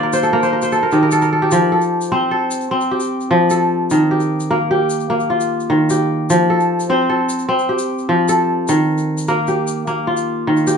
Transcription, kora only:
0.00 0.91 D#3 medium
0.00 0.29 A#3 medium
0.00 0.29 A#4 medium
0.00 0.13 C5 medium
0.00 0.98 D5 medium
0.00 0.53 F5 medium
0.00 0.27 G5 medium
0.13 0.43 C5 medium
0.23 0.59 A4 medium
0.33 0.78 A#3 medium
0.33 0.52 A#4 medium
0.43 0.62 C5 medium
0.53 0.78 A#4 medium
0.63 1.81 C5 medium
0.72 1.09 A4 medium
0.83 1.02 A#4 medium
0.92 1.57 D#3 medium
0.92 1.42 G4 medium
1.03 1.22 A#4 medium
1.12 1.32 A4 medium
1.22 1.78 A#4 medium
1.33 1.72 A4 medium
1.42 2.83 G4 medium
1.52 3.29 F3 medium
1.72 2.31 A4 medium
2.12 2.71 C4 medium
2.12 3.30 C5 medium
2.31 3.50 A4 medium
2.71 4.51 C4 medium
2.91 4.11 G4 medium
3.31 3.96 F3 medium
3.51 4.57 A4 medium
3.91 5.69 D#3 medium
4.11 4.70 G4 medium
4.51 5.09 A#3 medium
4.51 5.78 A#4 medium
4.71 5.90 G4 medium
5.10 6.56 A#3 medium
5.30 6.81 F4 medium
5.70 6.35 D#3 medium
5.90 7.32 G4 medium
6.30 8.08 F3 medium
6.50 7.09 A4 medium
6.90 7.48 C4 medium
6.90 8.09 C5 medium
7.10 8.28 A4 medium
7.49 9.29 C4 medium
7.69 9.10 G4 medium
8.09 8.73 F3 medium
8.29 9.34 A4 medium
8.69 10.46 D#3 medium
9.28 9.87 A#3 medium
9.28 10.56 A#4 medium
9.48 10.67 G4 medium
9.87 10.77 A#3 medium
10.07 10.77 F4 medium
10.47 10.77 D#3 medium
10.67 10.77 G4 medium

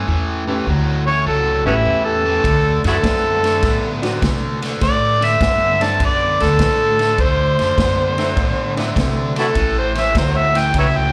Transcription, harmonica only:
1.07 1.26 C#5 medium
1.27 1.65 A4 medium
1.66 1.74 B3 medium
1.66 1.75 C#4 medium
1.66 2.04 E4 medium
2.05 2.82 A4 medium
2.88 2.96 E4 medium
2.88 2.96 F#4 medium
2.88 4.01 A4 medium
4.84 5.26 D5 loud
5.24 5.85 E5 medium
5.83 6.01 A5 medium
6.05 6.44 D5 medium
6.43 7.18 A4 medium
7.21 8.93 C5 loud
9.40 9.46 E4 medium
9.40 9.47 F#4 medium
9.40 9.76 A4 medium
9.79 10.02 C5 medium
10.01 10.17 E5 medium
10.18 10.39 C5 medium
10.38 10.60 E5 medium
10.59 10.76 G5 medium
10.79 10.87 B4 soft
10.79 10.87 C#5 soft
10.79 10.99 E5 medium
10.97 11.12 G5 medium

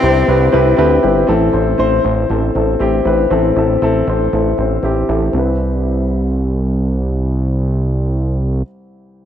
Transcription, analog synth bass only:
0.03 0.24 C2 loud
0.28 0.49 C2 loud
0.53 0.74 C2 medium
0.78 0.99 D2 medium
1.04 1.25 G1 medium
1.29 1.50 A1 medium
1.53 1.75 A1 medium
1.79 2.00 A1 medium
2.05 2.25 A1 loud
2.30 2.51 A1 medium
2.55 2.76 A1 medium
2.80 3.01 A1 medium
3.05 3.26 A1 medium
3.31 3.52 A1 loud
3.56 3.77 A1 loud
3.82 4.03 A1 medium
4.07 4.28 A1 medium
4.33 4.54 A1 medium
4.58 4.79 A1 medium
4.83 5.04 A1 medium
5.09 5.29 A1 medium
5.33 8.62 C2 medium

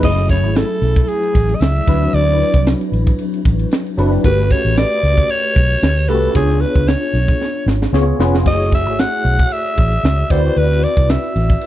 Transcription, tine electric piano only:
0.03 0.75 F#3 medium
0.03 0.75 A3 medium
0.03 0.75 C#4 medium
0.03 0.76 E4 medium
0.03 0.76 G#4 medium
1.87 2.72 F#3 medium
1.87 2.72 C4 medium
1.87 2.72 D4 medium
1.87 2.72 E4 medium
1.87 2.72 B4 medium
3.97 4.16 F#3 medium
3.97 4.16 C4 medium
3.97 4.17 D4 medium
3.97 4.17 E4 medium
3.97 4.17 B4 loud
4.24 4.96 A3 medium
4.24 4.96 C#4 medium
4.24 4.97 F#4 medium
4.24 4.97 G4 medium
4.24 4.31 A#4 medium
4.31 5.00 B4 medium
6.08 6.27 A3 medium
6.08 6.27 C#4 medium
6.08 6.27 F#4 medium
6.08 6.28 G4 medium
6.08 6.28 B4 medium
6.34 7.07 B3 medium
6.34 7.07 D4 medium
6.34 7.07 F4 medium
6.34 7.07 G#4 medium
6.34 7.07 C#5 medium
7.93 8.15 B3 medium
7.93 8.15 C#4 medium
7.93 8.15 F4 medium
7.93 8.15 G#4 medium
7.93 8.15 C#5 loud
8.19 8.38 B3 medium
8.19 8.38 C#4 medium
8.19 8.38 F4 medium
8.19 8.38 G#4 medium
8.19 8.39 B4 loud
8.45 9.18 A3 medium
8.45 9.18 E4 medium
8.45 9.18 F#4 medium
8.45 9.18 G#4 medium
8.45 8.53 C5 medium
8.53 9.22 C#5 medium
10.30 11.15 C4 medium
10.30 11.15 E4 medium
10.30 11.15 F#4 medium
10.30 11.15 B4 medium
10.30 11.15 D5 medium

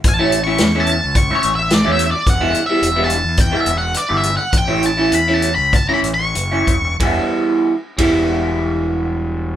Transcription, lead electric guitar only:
0.09 0.41 A5 medium
0.44 0.81 C#6 medium
0.80 1.17 A5 medium
1.17 1.35 C#6 medium
1.35 1.54 C#5 medium
1.55 1.73 E5 medium
1.74 1.92 D5 medium
1.92 2.10 E5 medium
2.11 2.27 D5 medium
2.30 2.63 F#5 medium
2.66 3.03 E5 medium
3.04 3.41 A5 medium
3.41 3.60 G5 medium
3.60 3.78 E5 medium
3.78 3.97 F#5 medium
3.97 4.16 D5 medium
4.17 4.36 E5 medium
4.37 4.57 F#5 medium
4.57 4.86 G5 medium
4.86 5.14 A5 medium
5.15 5.34 B5 medium
5.34 5.54 A5 medium
5.55 5.75 B5 medium
5.76 5.88 A5 medium
5.89 5.93 A#5 medium
5.94 5.99 B5 medium
6.14 6.96 C#6 medium

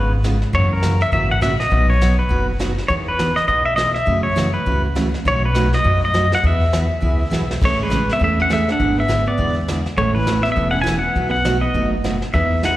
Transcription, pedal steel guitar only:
0.00 0.11 B4 medium
0.55 0.72 C#5 medium
0.73 1.02 A#4 medium
1.02 1.12 E5 medium
1.13 1.31 E5 medium
1.31 1.42 F#5 medium
1.42 1.59 E5 medium
1.60 1.87 D#5 medium
1.90 2.17 C#5 medium
2.19 2.46 B4 medium
2.88 2.93 C#5 medium
3.08 3.38 B4 medium
3.36 3.47 D#5 medium
3.48 3.65 D#5 medium
3.65 3.76 E5 loud
3.76 3.94 D#5 medium
3.94 4.22 E5 medium
4.23 4.52 C#5 medium
4.54 4.82 B4 medium
5.28 5.45 C#5 medium
5.45 5.75 B4 medium
5.74 6.01 D#5 medium
6.05 6.31 D#5 medium
6.35 6.45 F#5 medium
6.47 7.51 E5 loud
7.65 7.81 C#5 medium
7.83 8.11 B4 medium
8.13 8.22 E5 medium
8.24 8.40 E5 medium
8.42 8.52 F#5 medium
8.53 8.70 E5 medium
8.72 8.97 F#5 medium
9.00 9.26 E5 medium
9.28 9.55 D5 medium
9.98 10.16 C#5 medium
10.15 10.45 B4 medium
10.43 10.51 E5 medium
10.52 10.71 E5 medium
10.71 10.81 F#5 medium
10.82 10.99 G#5 loud
10.99 11.30 F#5 medium
11.31 11.62 F#5 loud
11.61 11.89 D#5 medium
12.34 12.64 E5 loud
12.65 12.77 F#5 loud

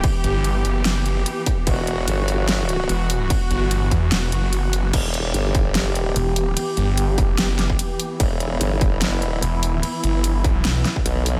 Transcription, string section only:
0.00 4.89 E3 medium
0.00 4.89 B3 medium
0.00 1.66 G4 medium
1.67 4.92 F#4 medium
4.93 11.40 E3 medium
4.93 11.40 B3 medium
4.93 8.19 G4 medium
8.20 11.40 E4 medium

